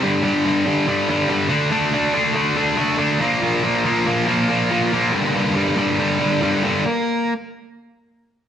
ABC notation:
X:1
M:4/4
L:1/8
Q:1/4=141
K:Gm
V:1 name="Distorted electric guitar" clef=bass
[G,,D,G,] [G,,D,G,] [G,,D,G,] [G,,D,G,] [G,,D,G,] [G,,D,G,] [G,,D,G,] [D,A,D] | [D,A,D] [D,A,D] [D,A,D] [D,A,D] [D,A,D] [D,A,D] [D,A,D] [B,,F,B,] | [B,,F,B,] [B,,F,B,] [B,,F,B,] [B,,F,B,] [B,,F,B,] [B,,F,B,] [B,,F,B,] [B,,F,B,] | [G,,D,G,] [G,,D,G,] [G,,D,G,] [G,,D,G,] [G,,D,G,] [G,,D,G,] [G,,D,G,] [G,,D,G,] |
z8 |]